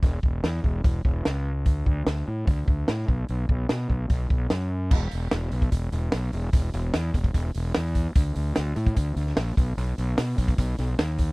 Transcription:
<<
  \new Staff \with { instrumentName = "Fingered electric bass" } { \clef bass \time 4/4 \key b \dorian \tempo 4 = 148 e,,8 e,,8 e,8 e,,8 e,,8 e,,8 cis,4 | d,8 d,8 d,8 a,8 d,8 d,8 a,8 b,,8 | b,,8 b,,8 b,8 b,,8 b,,8 b,,8 fis,4 | e,,8 e,,8 e,,8 b,,8 e,,8 e,,8 b,,8 e,,8 |
e,,8 e,,8 e,8 e,,8 e,,8 e,,8 e,4 | d,8 d,8 d,8 a,8 d,8 d,8 ais,,8 b,,8 | b,,8 b,,8 b,8 b,,8 b,,8 b,,8 dis,4 | }
  \new DrumStaff \with { instrumentName = "Drums" } \drummode { \time 4/4 <hho bd>8 bd8 <hho sn>8 bd8 <hho bd>8 bd8 <hho sn>4 | <hho bd>8 bd8 <hho sn>4 <hho bd>8 bd8 <hho sn>8 bd8 | hho8 bd8 <hho sn>8 bd8 <hho bd>8 bd8 <hho sn>4 | <cymc bd>8 hho8 <hho sn>8 hho16 bd16 <hho bd>8 hho8 <hho sn>8 hho8 |
<hho bd>8 hho8 <hho sn>8 <hho bd>16 bd16 <hho bd>8 hho8 <hho sn>8 <hho bd>8 | <hho bd>8 hho8 <hho sn>8 hho16 bd16 <hho bd>8 hho16 sn16 <hho sn>8 <hho bd>8 | hho8 hho8 <hho sn>8 <hho bd>16 bd16 <hho bd>8 <hho sn>8 <hho sn>8 <hho bd>8 | }
>>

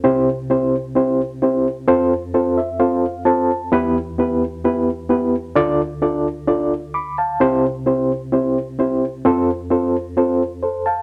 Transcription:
<<
  \new Staff \with { instrumentName = "Reed electric piano" } { \time 4/4 \key c \major \tempo 4 = 130 << { r1 | r4. e''8 f''4 a''4 | r1 | r2. <b'' d'''>8 <f'' a''>8~ |
<f'' a''>8 r2. r8 | r2. <a' c''>8 <f'' a''>8 | } \\ { <c' e' g' c''>8 r8 <c' e' g' c''>8 r8 <c' e' g' c''>8 r8 <c' e' g' c''>8 r8 | <c' f' a' c''>8 r8 <c' f' a' c''>8 r8 <c' f' a' c''>8 r8 <c' f' a' c''>8 r8 | <b e' g' b'>8 r8 <b e' g' b'>8 r8 <b e' g' b'>8 r8 <b e' g' b'>8 r8 | <d' f' a' d''>8 r8 <d' f' a' d''>8 r8 <d' f' a' d''>8 r4. |
<c' e' g' c''>8 r8 <c' e' g' c''>8 r8 <c' e' g' c''>8 r8 <c' e' g' c''>8 r8 | <c' f' a' c''>8 r8 <c' f' a' c''>8 r8 <c' f' a' c''>8 r4. | } >> }
  \new Staff \with { instrumentName = "Reed electric piano" } { \clef bass \time 4/4 \key c \major <c, c>1 | f,1 | <e, e>1 | <d, d>1 |
<c, c>1 | f,1 | }
>>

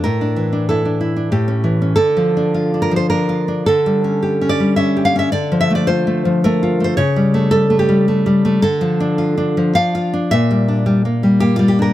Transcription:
\new Staff \with { instrumentName = "Nylon-string guitar" } { \time 3/4 \key d \minor \tempo 4 = 108 << { bes'4 a'4 g'4 | a'4. bes'16 c''16 bes'4 | a'4. d''8 e''8 f''16 e''16 | d''8 e''16 d''16 c''4 bes'8. c''16 |
cis''4 a'8 g'8 r4 | a'2 f''4 | e''2 g'16 f'16 g'16 bes'16 | } \\ { a,16 d'16 e16 d'16 e'16 d'16 e'16 d'16 a,16 cis'16 e16 cis'16 | \tuplet 3/2 { d8 f8 d'8 f'8 d'8 f8 d'8 f'8 d'8 } | \tuplet 3/2 { d8 g8 cis'8 g'8 cis'8 g8 cis'8 g'8 cis'8 } | \tuplet 3/2 { d8 f8 a8 f'8 a8 f8 a8 f'8 a8 } |
\tuplet 3/2 { cis8 g8 a8 g8 a8 g8 a8 g8 a8 } | \tuplet 3/2 { d8 f8 d'8 f'8 d'8 f8 d'8 f'8 d'8 } | \tuplet 3/2 { bes,8 g8 d'8 g8 bes8 g8 bes8 g8 d'8 } | } >> }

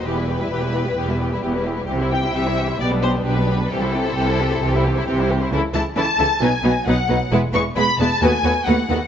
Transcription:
<<
  \new Staff \with { instrumentName = "Violin section" } { \time 4/4 \key c \lydian \tempo 4 = 132 b'2.~ b'8 r8 | r8 g''8 e''4 d''8 c''8 b'4 | a'2.~ a'8 r8 | \key b \mixolydian r8 a''8 a''4 gis''4 fis''4 |
r8 cis'''8 b''8 a''8 gis''4 fis''4 | }
  \new Staff \with { instrumentName = "Violin section" } { \time 4/4 \key c \lydian g'16 <e' b'>16 g'16 <e' b'>16 g'16 <e' b'>16 g'16 <e' b'>16 g'16 <e' b'>16 g'16 <e' b'>16 g'16 <e' b'>16 g'16 <e' b'>16 | g'16 <e' c''>16 g'16 <e' c''>16 g'16 <e' c''>16 g'16 <e' c''>16 <b g'>16 <d' b'>16 <b g'>16 <d' b'>16 <b g'>16 <d' b'>16 <b g'>16 <d' b'>16 | g'16 <e' c''>16 g'16 <e' c''>16 g'16 <e' c''>16 g'16 <e' c''>16 g'16 <e' c''>16 g'16 <e' c''>16 g'16 <e' c''>16 g'16 <e' c''>16 | \key b \mixolydian <e' a'>8 <e' a'>8 <e' a'>8 <e' a'>8 <dis' b'>8 <dis' b'>8 <dis' b'>8 <dis' b'>8 |
<e' b'>8 <e' b'>8 <e' b'>8 <e' b'>8 <fis' b'>8 <fis' b'>8 <fis' b'>8 <fis' b'>8 | }
  \new Staff \with { instrumentName = "Viola section" } { \time 4/4 \key c \lydian <e b>16 g16 <e b>16 g16 <e b>16 g16 <e b>16 g16 <e b>16 g16 <e b>16 g16 <e b>16 g16 <e b>16 g16 | <e c'>16 <g e'>16 <e c'>16 <g e'>16 <e c'>16 <g e'>16 <e c'>16 <g e'>16 <b d'>16 <g b>16 <b d'>16 <g b>16 <b d'>16 <g b>16 <b d'>16 <g b>16 | <e c'>16 <g e'>16 <e c'>16 <g e'>16 <e c'>16 <g e'>16 <e c'>16 <g e'>16 <e c'>16 <g e'>16 <e c'>16 <g e'>16 <e c'>16 <g e'>16 <e c'>16 <g e'>16 | \key b \mixolydian <e e'>8 <e e'>8 <e e'>8 <e e'>8 <fis b>8 <fis b>8 <fis b>8 <fis b>8 |
<gis b>8 <gis b>8 <gis b>8 <gis b>8 <a b>8 <a b>8 <a b>8 <a b>8 | }
  \new Staff \with { instrumentName = "Cello section" } { \clef bass \time 4/4 \key c \lydian e,4 e,4 e,4 e,4 | c4 c4 b,4 b,4 | c4 c4 c4 c4 | \key b \mixolydian cis8 cis8 cis8 cis8 b,8 b,8 b,8 b,8 |
e,8 e,8 e,8 e,8 dis,8 dis,8 dis,8 dis,8 | }
  \new Staff \with { instrumentName = "Double bass section" } { \clef bass \time 4/4 \key c \lydian e,,4 e,,4 e,,4 e,,4 | c,4 c,4 b,,4 b,,4 | c,4 c,4 c,4 c,4 | \key b \mixolydian cis,8 cis,8 cis,8 cis,8 b,,8 b,,8 b,,8 b,,8 |
e,,8 e,,8 e,,8 e,,8 dis,8 dis,8 dis,8 dis,8 | }
>>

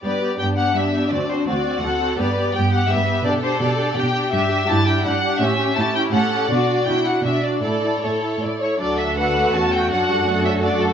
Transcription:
<<
  \new Staff \with { instrumentName = "Violin section" } { \time 3/4 \key g \major \tempo 4 = 166 d''4 g''8 fis''8 e''4 | d''8 c''8 d''4 fis''4 | d''4 g''8 fis''8 e''4 | d''8 c''8 d''4 g''4 |
\key d \major e''4 a''8 g''8 fis''4 | e''4 a''8 g''8 fis''4 | d''4 g''8 fis''8 e''8 d''8 | d''4 cis''4 r8 cis''8 |
d''8 e''8 fis''4 a''8 g''8 | fis''4. e''8 d''8 a'8 | }
  \new Staff \with { instrumentName = "Violin section" } { \time 3/4 \key g \major << { b'4 d'2~ | d'4 fis'4 a'4 | b'4 g'4 b'4 | a'2 g'4 |
\key d \major g'4 e'4 d'4 | cis'4 e'4 a'4 | fis'4 e'4 d'4 | a'4 a'4 d''8 cis''8 |
a'4 b'4 a'4 | a'2. | } \\ { r2. | r2. | r2. | r2. |
r2. | r2. | r2. | r2. |
fis'2.~ | fis'4 d'4 fis'4 | } >> }
  \new Staff \with { instrumentName = "Viola section" } { \time 3/4 \key g \major << { g'8 g'8 g'8 g'8 g'8 g'8 | fis'8 fis'8 fis'8 fis'8 fis'8 fis'8 | g'8 g'8 g'8 g'8 g'8 g'8 | g'8 g'8 g'8 g'8 g'8 g'8 |
\key d \major g'8 g'8 g'8 g'8 g'8 g'8 | g'8 g'8 g'8 g'8 g'8 g'8 | fis'8 fis'8 fis'8 fis'8 fis'8 fis'8 | a'8 a'8 a'8 a'8 a'8 a'8 |
d'4 d'4 cis'4 | d'4 b8 cis'8 d'4 | } \\ { b8 b8 b8 b8 b8 b8 | c'8 c'8 c'8 c'8 c'8 c'8 | b8 b8 b8 b8 b8 b8 | d'8 d'8 d'8 d'8 d'8 d'8 |
d'8 d'8 d'8 d'8 d'8 d'8 | cis'8 cis'8 cis'8 cis'8 cis'8 cis'8 | d'8 d'8 d'8 d'8 d'8 d'8 | e'8 e'8 e'8 e'8 e'8 e'8 |
fis4 a8 a4. | fis8 g8 a2 | } >> }
  \new Staff \with { instrumentName = "Cello section" } { \clef bass \time 3/4 \key g \major g,4 g,4 g,4 | d,4 d,4 d,4 | g,4 g,4 g,4 | b,4 b,4 b,4 |
\key d \major g,4 g,4 g,4 | a,4 a,4 a,4 | b,4 b,4 b,4 | a,4 a,4 a,4 |
r4 a'4 fis'4~ | fis'2. | }
  \new Staff \with { instrumentName = "Double bass section" } { \clef bass \time 3/4 \key g \major r2. | r2. | r2. | r2. |
\key d \major r2. | r2. | r2. | r2. |
d,2 e,4 | fis,2. | }
>>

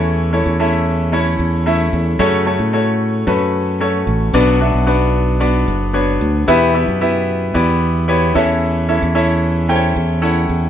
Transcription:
<<
  \new Staff \with { instrumentName = "Grand piano" } { \time 4/4 \key a \mixolydian \tempo 4 = 112 <a cis' e' a' cis''>8 <a cis' e' a' cis''>8 <a cis' e' a' e''>4 <a cis' e' a' cis''>4 <a cis' e' a' e''>4 | <a cis' fis' a' cis''>8 <a cis' fis' a' cis''>8 <a cis' fis' a' cis''>4 <a cis' fis' a' b'>4 <a cis' fis' a' cis''>4 | <b d' fis' b' d''>8 <b d' fis' b' e''>8 <b d' fis' b' d''>4 <b d' fis' b' d''>4 <b d' fis' b' cis''>4 | <b e' g' b' e''>8 <b e' g' b' e''>8 <b e' g' b' e''>4 <b e' g' b' d''>4 <b e' g' b' cis''>8 <cis' e' a' cis'' e''>8~ |
<cis' e' a' cis'' e''>8 <cis' e' a' cis'' e''>8 <cis' e' a' cis'' e''>4 <cis' e' a' c'' cis'' g''>4 <cis' e' a' cis'' fis''>4 | }
  \new Staff \with { instrumentName = "Grand piano" } { \clef bass \time 4/4 \key a \mixolydian e4 r2. | cis4. r2 r8 | <b, fis>4. r2 r8 | b,4. r2 e8~ |
e4 r2. | }
  \new Staff \with { instrumentName = "Fingered electric bass" } { \clef bass \time 4/4 \key a \mixolydian e,8. e,4.~ e,16 e,4 e,8 | fis,8. a,4~ a,16 fis,4. a,,8 | b,,8. b,,4.~ b,,16 fis,,4 d,8 | e,8. fis,4~ fis,16 e,4. e,8~ |
e,8. e,4.~ e,16 e,4 e,8 | }
>>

